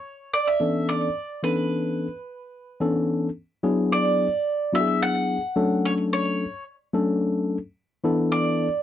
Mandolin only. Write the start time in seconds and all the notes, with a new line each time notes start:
Already playing: C#5
0.34 D5
0.47 E5
0.89 D5
1.44 B4
3.92 D5
4.75 E5
5.02 F#5
5.85 C#5
6.13 C#5
8.32 D5